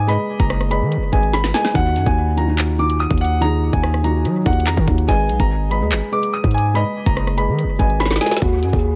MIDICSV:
0, 0, Header, 1, 5, 480
1, 0, Start_track
1, 0, Key_signature, -6, "minor"
1, 0, Tempo, 416667
1, 98, Time_signature, 4, 2, 24, 8
1, 10317, End_track
2, 0, Start_track
2, 0, Title_t, "Grand piano"
2, 0, Program_c, 0, 0
2, 96, Note_on_c, 0, 83, 87
2, 435, Note_off_c, 0, 83, 0
2, 457, Note_on_c, 0, 82, 80
2, 796, Note_off_c, 0, 82, 0
2, 816, Note_on_c, 0, 83, 83
2, 1268, Note_off_c, 0, 83, 0
2, 1297, Note_on_c, 0, 80, 77
2, 1516, Note_off_c, 0, 80, 0
2, 1537, Note_on_c, 0, 83, 92
2, 1756, Note_off_c, 0, 83, 0
2, 1777, Note_on_c, 0, 80, 90
2, 1996, Note_off_c, 0, 80, 0
2, 2016, Note_on_c, 0, 78, 102
2, 2355, Note_off_c, 0, 78, 0
2, 2376, Note_on_c, 0, 80, 80
2, 2715, Note_off_c, 0, 80, 0
2, 2737, Note_on_c, 0, 82, 74
2, 3189, Note_off_c, 0, 82, 0
2, 3216, Note_on_c, 0, 86, 84
2, 3435, Note_off_c, 0, 86, 0
2, 3458, Note_on_c, 0, 87, 94
2, 3676, Note_off_c, 0, 87, 0
2, 3698, Note_on_c, 0, 78, 91
2, 3916, Note_off_c, 0, 78, 0
2, 3935, Note_on_c, 0, 82, 108
2, 4275, Note_off_c, 0, 82, 0
2, 4297, Note_on_c, 0, 80, 85
2, 4636, Note_off_c, 0, 80, 0
2, 4657, Note_on_c, 0, 82, 80
2, 5109, Note_off_c, 0, 82, 0
2, 5137, Note_on_c, 0, 78, 75
2, 5356, Note_off_c, 0, 78, 0
2, 5376, Note_on_c, 0, 82, 84
2, 5596, Note_off_c, 0, 82, 0
2, 5857, Note_on_c, 0, 80, 104
2, 6196, Note_off_c, 0, 80, 0
2, 6218, Note_on_c, 0, 82, 79
2, 6557, Note_off_c, 0, 82, 0
2, 6578, Note_on_c, 0, 83, 79
2, 7029, Note_off_c, 0, 83, 0
2, 7058, Note_on_c, 0, 86, 87
2, 7276, Note_off_c, 0, 86, 0
2, 7298, Note_on_c, 0, 87, 81
2, 7516, Note_off_c, 0, 87, 0
2, 7538, Note_on_c, 0, 80, 85
2, 7757, Note_off_c, 0, 80, 0
2, 7777, Note_on_c, 0, 83, 88
2, 8116, Note_off_c, 0, 83, 0
2, 8136, Note_on_c, 0, 82, 81
2, 8475, Note_off_c, 0, 82, 0
2, 8497, Note_on_c, 0, 83, 83
2, 8949, Note_off_c, 0, 83, 0
2, 8975, Note_on_c, 0, 80, 75
2, 9195, Note_off_c, 0, 80, 0
2, 9215, Note_on_c, 0, 83, 92
2, 9435, Note_off_c, 0, 83, 0
2, 9457, Note_on_c, 0, 80, 90
2, 9676, Note_off_c, 0, 80, 0
2, 9698, Note_on_c, 0, 66, 98
2, 10036, Note_off_c, 0, 66, 0
2, 10057, Note_on_c, 0, 68, 81
2, 10317, Note_off_c, 0, 68, 0
2, 10317, End_track
3, 0, Start_track
3, 0, Title_t, "Felt piano"
3, 0, Program_c, 1, 0
3, 0, Control_c, 1, 64, 127
3, 0, Note_on_c, 1, 56, 74
3, 0, Note_on_c, 1, 68, 72
3, 0, Note_on_c, 1, 71, 67
3, 0, Note_on_c, 1, 75, 77
3, 84, Note_off_c, 1, 56, 0
3, 84, Note_on_c, 1, 56, 101
3, 92, Note_off_c, 1, 68, 0
3, 92, Note_on_c, 1, 68, 85
3, 101, Note_off_c, 1, 71, 0
3, 101, Note_on_c, 1, 71, 85
3, 109, Note_off_c, 1, 75, 0
3, 109, Note_on_c, 1, 75, 116
3, 673, Note_off_c, 1, 56, 0
3, 677, Note_off_c, 1, 68, 0
3, 681, Note_off_c, 1, 71, 0
3, 685, Note_off_c, 1, 75, 0
3, 806, Note_on_c, 1, 56, 83
3, 814, Note_on_c, 1, 68, 74
3, 822, Note_on_c, 1, 71, 75
3, 830, Note_on_c, 1, 75, 86
3, 1199, Note_off_c, 1, 56, 0
3, 1203, Note_off_c, 1, 68, 0
3, 1207, Note_off_c, 1, 71, 0
3, 1211, Note_off_c, 1, 75, 0
3, 1286, Note_on_c, 1, 56, 81
3, 1294, Note_on_c, 1, 68, 67
3, 1302, Note_on_c, 1, 71, 70
3, 1311, Note_on_c, 1, 75, 80
3, 1679, Note_off_c, 1, 56, 0
3, 1683, Note_off_c, 1, 68, 0
3, 1688, Note_off_c, 1, 71, 0
3, 1692, Note_off_c, 1, 75, 0
3, 1767, Note_on_c, 1, 56, 71
3, 1775, Note_on_c, 1, 68, 62
3, 1783, Note_on_c, 1, 71, 62
3, 1792, Note_on_c, 1, 75, 76
3, 1966, Note_off_c, 1, 56, 0
3, 1970, Note_off_c, 1, 68, 0
3, 1974, Note_off_c, 1, 71, 0
3, 1979, Note_off_c, 1, 75, 0
3, 2002, Note_on_c, 1, 51, 94
3, 2010, Note_on_c, 1, 63, 94
3, 2028, Note_on_c, 1, 66, 105
3, 2034, Control_c, 1, 64, 0
3, 2205, Control_c, 1, 64, 127
3, 2591, Note_off_c, 1, 51, 0
3, 2596, Note_off_c, 1, 63, 0
3, 2604, Note_off_c, 1, 66, 0
3, 2726, Note_on_c, 1, 51, 78
3, 2735, Note_on_c, 1, 63, 70
3, 2743, Note_on_c, 1, 65, 78
3, 2751, Note_on_c, 1, 66, 90
3, 2829, Note_off_c, 1, 51, 0
3, 2833, Note_off_c, 1, 63, 0
3, 2837, Note_off_c, 1, 65, 0
3, 2841, Note_off_c, 1, 66, 0
3, 2846, Note_on_c, 1, 51, 71
3, 2854, Note_on_c, 1, 63, 65
3, 2863, Note_on_c, 1, 65, 67
3, 2871, Note_on_c, 1, 66, 84
3, 3143, Note_off_c, 1, 51, 0
3, 3147, Note_off_c, 1, 63, 0
3, 3151, Note_off_c, 1, 65, 0
3, 3155, Note_off_c, 1, 66, 0
3, 3207, Note_on_c, 1, 51, 78
3, 3215, Note_on_c, 1, 63, 69
3, 3224, Note_on_c, 1, 65, 70
3, 3232, Note_on_c, 1, 66, 81
3, 3794, Note_off_c, 1, 51, 0
3, 3798, Note_off_c, 1, 63, 0
3, 3802, Note_off_c, 1, 65, 0
3, 3806, Note_off_c, 1, 66, 0
3, 3925, Note_on_c, 1, 51, 98
3, 3934, Note_on_c, 1, 63, 87
3, 3942, Note_on_c, 1, 65, 87
3, 3951, Note_on_c, 1, 68, 109
3, 4513, Note_off_c, 1, 51, 0
3, 4517, Note_off_c, 1, 63, 0
3, 4521, Note_off_c, 1, 65, 0
3, 4526, Note_off_c, 1, 68, 0
3, 4649, Note_on_c, 1, 51, 81
3, 4658, Note_on_c, 1, 63, 74
3, 4666, Note_on_c, 1, 65, 66
3, 4674, Note_on_c, 1, 66, 99
3, 5041, Note_off_c, 1, 51, 0
3, 5045, Note_off_c, 1, 63, 0
3, 5050, Note_off_c, 1, 65, 0
3, 5053, Note_off_c, 1, 66, 0
3, 5128, Note_on_c, 1, 51, 76
3, 5135, Note_on_c, 1, 63, 72
3, 5145, Note_on_c, 1, 65, 70
3, 5153, Note_on_c, 1, 66, 82
3, 5520, Note_off_c, 1, 51, 0
3, 5524, Note_off_c, 1, 63, 0
3, 5529, Note_off_c, 1, 65, 0
3, 5533, Note_off_c, 1, 66, 0
3, 5607, Note_on_c, 1, 51, 69
3, 5615, Note_on_c, 1, 63, 65
3, 5623, Note_on_c, 1, 65, 60
3, 5632, Note_on_c, 1, 66, 76
3, 5806, Note_off_c, 1, 51, 0
3, 5810, Note_off_c, 1, 63, 0
3, 5814, Note_off_c, 1, 65, 0
3, 5819, Note_off_c, 1, 66, 0
3, 5850, Note_on_c, 1, 56, 102
3, 5858, Note_on_c, 1, 68, 90
3, 5867, Note_on_c, 1, 71, 88
3, 5874, Note_on_c, 1, 75, 108
3, 5875, Control_c, 1, 64, 0
3, 6045, Control_c, 1, 64, 127
3, 6435, Note_off_c, 1, 56, 0
3, 6439, Note_off_c, 1, 68, 0
3, 6444, Note_off_c, 1, 71, 0
3, 6448, Note_off_c, 1, 75, 0
3, 6566, Note_on_c, 1, 56, 80
3, 6574, Note_on_c, 1, 68, 76
3, 6583, Note_on_c, 1, 71, 70
3, 6591, Note_on_c, 1, 75, 92
3, 6669, Note_off_c, 1, 56, 0
3, 6673, Note_off_c, 1, 68, 0
3, 6677, Note_off_c, 1, 71, 0
3, 6681, Note_off_c, 1, 75, 0
3, 6687, Note_on_c, 1, 56, 69
3, 6694, Note_on_c, 1, 68, 61
3, 6703, Note_on_c, 1, 71, 69
3, 6712, Note_on_c, 1, 75, 80
3, 6983, Note_off_c, 1, 56, 0
3, 6987, Note_off_c, 1, 68, 0
3, 6991, Note_off_c, 1, 71, 0
3, 6996, Note_off_c, 1, 75, 0
3, 7049, Note_on_c, 1, 56, 73
3, 7056, Note_on_c, 1, 68, 71
3, 7065, Note_on_c, 1, 71, 69
3, 7073, Note_on_c, 1, 75, 78
3, 7635, Note_off_c, 1, 56, 0
3, 7638, Note_off_c, 1, 68, 0
3, 7643, Note_off_c, 1, 71, 0
3, 7647, Note_off_c, 1, 75, 0
3, 7765, Note_on_c, 1, 56, 96
3, 7774, Note_on_c, 1, 68, 84
3, 7781, Note_on_c, 1, 71, 85
3, 7789, Note_on_c, 1, 75, 116
3, 8353, Note_off_c, 1, 56, 0
3, 8357, Note_off_c, 1, 68, 0
3, 8361, Note_off_c, 1, 71, 0
3, 8365, Note_off_c, 1, 75, 0
3, 8486, Note_on_c, 1, 56, 80
3, 8494, Note_on_c, 1, 68, 76
3, 8503, Note_on_c, 1, 71, 76
3, 8512, Note_on_c, 1, 75, 88
3, 8879, Note_off_c, 1, 56, 0
3, 8883, Note_off_c, 1, 68, 0
3, 8888, Note_off_c, 1, 71, 0
3, 8892, Note_off_c, 1, 75, 0
3, 8968, Note_on_c, 1, 56, 79
3, 8976, Note_on_c, 1, 68, 64
3, 8984, Note_on_c, 1, 71, 70
3, 8993, Note_on_c, 1, 75, 78
3, 9360, Note_off_c, 1, 56, 0
3, 9364, Note_off_c, 1, 68, 0
3, 9368, Note_off_c, 1, 71, 0
3, 9373, Note_off_c, 1, 75, 0
3, 9448, Note_on_c, 1, 56, 74
3, 9457, Note_on_c, 1, 68, 63
3, 9464, Note_on_c, 1, 71, 64
3, 9474, Note_on_c, 1, 75, 73
3, 9647, Note_off_c, 1, 56, 0
3, 9651, Note_off_c, 1, 68, 0
3, 9655, Note_off_c, 1, 71, 0
3, 9660, Note_off_c, 1, 75, 0
3, 9714, Control_c, 1, 64, 0
3, 9894, Control_c, 1, 64, 127
3, 10317, End_track
4, 0, Start_track
4, 0, Title_t, "808-style bass"
4, 0, Program_c, 2, 38
4, 0, Note_on_c, 2, 44, 102
4, 199, Note_off_c, 2, 44, 0
4, 457, Note_on_c, 2, 30, 114
4, 937, Note_on_c, 2, 51, 96
4, 955, Note_off_c, 2, 30, 0
4, 1118, Note_on_c, 2, 30, 103
4, 1135, Note_off_c, 2, 51, 0
4, 1289, Note_off_c, 2, 30, 0
4, 1299, Note_on_c, 2, 32, 106
4, 1759, Note_off_c, 2, 32, 0
4, 2017, Note_on_c, 2, 39, 110
4, 2258, Note_on_c, 2, 42, 98
4, 2275, Note_off_c, 2, 39, 0
4, 2372, Note_off_c, 2, 42, 0
4, 2377, Note_on_c, 2, 39, 108
4, 3531, Note_off_c, 2, 39, 0
4, 3578, Note_on_c, 2, 39, 102
4, 4269, Note_off_c, 2, 39, 0
4, 4298, Note_on_c, 2, 39, 112
4, 4897, Note_on_c, 2, 54, 104
4, 4915, Note_off_c, 2, 39, 0
4, 5126, Note_off_c, 2, 54, 0
4, 5139, Note_on_c, 2, 39, 109
4, 5378, Note_on_c, 2, 41, 99
4, 5395, Note_off_c, 2, 39, 0
4, 5492, Note_off_c, 2, 41, 0
4, 5498, Note_on_c, 2, 51, 101
4, 5611, Note_off_c, 2, 51, 0
4, 5617, Note_on_c, 2, 39, 108
4, 5848, Note_off_c, 2, 39, 0
4, 5858, Note_on_c, 2, 32, 109
4, 6098, Note_on_c, 2, 35, 99
4, 6115, Note_off_c, 2, 32, 0
4, 6212, Note_off_c, 2, 35, 0
4, 6218, Note_on_c, 2, 32, 113
4, 6698, Note_on_c, 2, 39, 99
4, 6715, Note_off_c, 2, 32, 0
4, 6818, Note_on_c, 2, 32, 106
4, 6835, Note_off_c, 2, 39, 0
4, 6932, Note_off_c, 2, 32, 0
4, 7418, Note_on_c, 2, 44, 106
4, 7879, Note_off_c, 2, 44, 0
4, 8137, Note_on_c, 2, 30, 109
4, 8619, Note_on_c, 2, 51, 95
4, 8636, Note_off_c, 2, 30, 0
4, 8799, Note_on_c, 2, 30, 106
4, 8816, Note_off_c, 2, 51, 0
4, 8969, Note_off_c, 2, 30, 0
4, 8979, Note_on_c, 2, 32, 105
4, 9439, Note_off_c, 2, 32, 0
4, 9698, Note_on_c, 2, 39, 107
4, 9939, Note_on_c, 2, 42, 100
4, 9956, Note_off_c, 2, 39, 0
4, 10052, Note_off_c, 2, 42, 0
4, 10058, Note_on_c, 2, 39, 105
4, 10317, Note_off_c, 2, 39, 0
4, 10317, End_track
5, 0, Start_track
5, 0, Title_t, "Drums"
5, 99, Note_on_c, 9, 42, 76
5, 214, Note_off_c, 9, 42, 0
5, 457, Note_on_c, 9, 36, 96
5, 457, Note_on_c, 9, 42, 84
5, 573, Note_off_c, 9, 36, 0
5, 573, Note_off_c, 9, 42, 0
5, 577, Note_on_c, 9, 37, 96
5, 692, Note_off_c, 9, 37, 0
5, 699, Note_on_c, 9, 37, 68
5, 814, Note_off_c, 9, 37, 0
5, 818, Note_on_c, 9, 42, 84
5, 933, Note_off_c, 9, 42, 0
5, 1058, Note_on_c, 9, 42, 79
5, 1173, Note_off_c, 9, 42, 0
5, 1298, Note_on_c, 9, 42, 72
5, 1299, Note_on_c, 9, 36, 100
5, 1413, Note_off_c, 9, 42, 0
5, 1414, Note_off_c, 9, 36, 0
5, 1418, Note_on_c, 9, 42, 43
5, 1533, Note_off_c, 9, 42, 0
5, 1537, Note_on_c, 9, 38, 64
5, 1537, Note_on_c, 9, 42, 75
5, 1653, Note_off_c, 9, 38, 0
5, 1653, Note_off_c, 9, 42, 0
5, 1657, Note_on_c, 9, 38, 70
5, 1772, Note_off_c, 9, 38, 0
5, 1777, Note_on_c, 9, 38, 94
5, 1892, Note_off_c, 9, 38, 0
5, 1897, Note_on_c, 9, 38, 96
5, 1897, Note_on_c, 9, 42, 75
5, 2012, Note_off_c, 9, 38, 0
5, 2012, Note_off_c, 9, 42, 0
5, 2017, Note_on_c, 9, 36, 125
5, 2017, Note_on_c, 9, 42, 76
5, 2132, Note_off_c, 9, 36, 0
5, 2132, Note_off_c, 9, 42, 0
5, 2257, Note_on_c, 9, 42, 89
5, 2373, Note_off_c, 9, 42, 0
5, 2377, Note_on_c, 9, 36, 102
5, 2492, Note_off_c, 9, 36, 0
5, 2737, Note_on_c, 9, 42, 83
5, 2852, Note_off_c, 9, 42, 0
5, 2976, Note_on_c, 9, 39, 125
5, 3092, Note_off_c, 9, 39, 0
5, 3338, Note_on_c, 9, 42, 86
5, 3453, Note_off_c, 9, 42, 0
5, 3578, Note_on_c, 9, 36, 102
5, 3579, Note_on_c, 9, 42, 54
5, 3658, Note_off_c, 9, 42, 0
5, 3658, Note_on_c, 9, 42, 74
5, 3693, Note_off_c, 9, 36, 0
5, 3739, Note_off_c, 9, 42, 0
5, 3739, Note_on_c, 9, 42, 85
5, 3854, Note_off_c, 9, 42, 0
5, 3938, Note_on_c, 9, 42, 79
5, 4053, Note_off_c, 9, 42, 0
5, 4298, Note_on_c, 9, 36, 101
5, 4298, Note_on_c, 9, 42, 85
5, 4413, Note_off_c, 9, 36, 0
5, 4413, Note_off_c, 9, 42, 0
5, 4418, Note_on_c, 9, 37, 96
5, 4533, Note_off_c, 9, 37, 0
5, 4539, Note_on_c, 9, 37, 71
5, 4654, Note_off_c, 9, 37, 0
5, 4658, Note_on_c, 9, 42, 84
5, 4773, Note_off_c, 9, 42, 0
5, 4897, Note_on_c, 9, 42, 82
5, 5012, Note_off_c, 9, 42, 0
5, 5137, Note_on_c, 9, 42, 45
5, 5138, Note_on_c, 9, 36, 103
5, 5217, Note_off_c, 9, 42, 0
5, 5217, Note_on_c, 9, 42, 59
5, 5254, Note_off_c, 9, 36, 0
5, 5297, Note_off_c, 9, 42, 0
5, 5297, Note_on_c, 9, 42, 76
5, 5377, Note_off_c, 9, 42, 0
5, 5377, Note_on_c, 9, 39, 108
5, 5377, Note_on_c, 9, 42, 77
5, 5492, Note_off_c, 9, 39, 0
5, 5492, Note_off_c, 9, 42, 0
5, 5497, Note_on_c, 9, 36, 105
5, 5613, Note_off_c, 9, 36, 0
5, 5618, Note_on_c, 9, 36, 96
5, 5733, Note_off_c, 9, 36, 0
5, 5738, Note_on_c, 9, 42, 75
5, 5853, Note_off_c, 9, 42, 0
5, 5857, Note_on_c, 9, 42, 77
5, 5858, Note_on_c, 9, 36, 124
5, 5972, Note_off_c, 9, 42, 0
5, 5973, Note_off_c, 9, 36, 0
5, 6098, Note_on_c, 9, 42, 86
5, 6213, Note_off_c, 9, 42, 0
5, 6218, Note_on_c, 9, 36, 100
5, 6333, Note_off_c, 9, 36, 0
5, 6578, Note_on_c, 9, 42, 84
5, 6693, Note_off_c, 9, 42, 0
5, 6817, Note_on_c, 9, 39, 118
5, 6933, Note_off_c, 9, 39, 0
5, 7178, Note_on_c, 9, 42, 85
5, 7293, Note_off_c, 9, 42, 0
5, 7418, Note_on_c, 9, 36, 103
5, 7418, Note_on_c, 9, 42, 55
5, 7498, Note_off_c, 9, 42, 0
5, 7498, Note_on_c, 9, 42, 69
5, 7533, Note_off_c, 9, 36, 0
5, 7579, Note_off_c, 9, 42, 0
5, 7579, Note_on_c, 9, 42, 85
5, 7694, Note_off_c, 9, 42, 0
5, 7778, Note_on_c, 9, 42, 76
5, 7893, Note_off_c, 9, 42, 0
5, 8137, Note_on_c, 9, 42, 84
5, 8138, Note_on_c, 9, 36, 101
5, 8253, Note_off_c, 9, 36, 0
5, 8253, Note_off_c, 9, 42, 0
5, 8257, Note_on_c, 9, 37, 94
5, 8372, Note_off_c, 9, 37, 0
5, 8379, Note_on_c, 9, 37, 69
5, 8494, Note_off_c, 9, 37, 0
5, 8499, Note_on_c, 9, 42, 84
5, 8614, Note_off_c, 9, 42, 0
5, 8739, Note_on_c, 9, 42, 81
5, 8854, Note_off_c, 9, 42, 0
5, 8979, Note_on_c, 9, 36, 104
5, 8979, Note_on_c, 9, 42, 74
5, 9094, Note_off_c, 9, 42, 0
5, 9095, Note_off_c, 9, 36, 0
5, 9099, Note_on_c, 9, 42, 43
5, 9214, Note_off_c, 9, 42, 0
5, 9218, Note_on_c, 9, 38, 64
5, 9218, Note_on_c, 9, 42, 76
5, 9279, Note_off_c, 9, 38, 0
5, 9279, Note_on_c, 9, 38, 63
5, 9333, Note_off_c, 9, 42, 0
5, 9338, Note_off_c, 9, 38, 0
5, 9338, Note_on_c, 9, 38, 80
5, 9398, Note_off_c, 9, 38, 0
5, 9398, Note_on_c, 9, 38, 75
5, 9458, Note_off_c, 9, 38, 0
5, 9458, Note_on_c, 9, 38, 94
5, 9518, Note_off_c, 9, 38, 0
5, 9518, Note_on_c, 9, 38, 86
5, 9578, Note_off_c, 9, 38, 0
5, 9578, Note_on_c, 9, 38, 106
5, 9578, Note_on_c, 9, 42, 73
5, 9638, Note_off_c, 9, 38, 0
5, 9638, Note_on_c, 9, 38, 97
5, 9693, Note_off_c, 9, 42, 0
5, 9698, Note_on_c, 9, 36, 119
5, 9698, Note_on_c, 9, 42, 76
5, 9753, Note_off_c, 9, 38, 0
5, 9813, Note_off_c, 9, 36, 0
5, 9813, Note_off_c, 9, 42, 0
5, 9938, Note_on_c, 9, 42, 89
5, 10054, Note_off_c, 9, 42, 0
5, 10058, Note_on_c, 9, 36, 97
5, 10173, Note_off_c, 9, 36, 0
5, 10317, End_track
0, 0, End_of_file